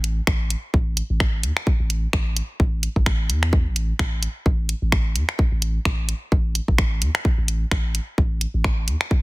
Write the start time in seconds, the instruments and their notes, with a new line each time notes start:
Already playing: sub bass A1
0.04 closed hi-hat
0.27 sub bass A1, finger snap, kick
0.50 closed hi-hat
0.74 sub bass A1, kick
0.97 closed hi-hat
1.10 sub bass A1
1.20 finger snap, kick
1.43 sub bass E2, closed hi-hat
1.57 finger snap
1.67 kick
1.80 sub bass A1
1.90 closed hi-hat
2.13 sub bass A1, finger snap, kick
2.37 closed hi-hat
2.60 sub bass A1, kick
2.83 closed hi-hat
2.96 sub bass A1, kick
3.06 finger snap, kick
3.29 sub bass E2, closed hi-hat
3.43 finger snap
3.53 kick
3.66 sub bass A1
3.76 closed hi-hat
3.99 sub bass A1, finger snap, kick
4.23 closed hi-hat
4.46 sub bass A1, kick
4.69 closed hi-hat
4.82 sub bass A1
4.92 finger snap, kick
5.16 sub bass E2, closed hi-hat
5.29 finger snap
5.39 kick
5.52 sub bass A1
5.62 closed hi-hat
5.85 sub bass A1, finger snap, kick
6.09 closed hi-hat
6.32 sub bass A1, kick
6.55 closed hi-hat
6.68 sub bass A1, kick
6.78 finger snap, kick
7.02 sub bass E2, closed hi-hat
7.15 finger snap
7.25 kick
7.38 sub bass A1
7.48 closed hi-hat
7.71 sub bass A1, finger snap, kick
7.95 closed hi-hat
8.18 sub bass A1, kick
8.41 closed hi-hat
8.54 sub bass A1
8.64 finger snap, kick
8.88 sub bass E2, closed hi-hat
9.01 finger snap
9.11 kick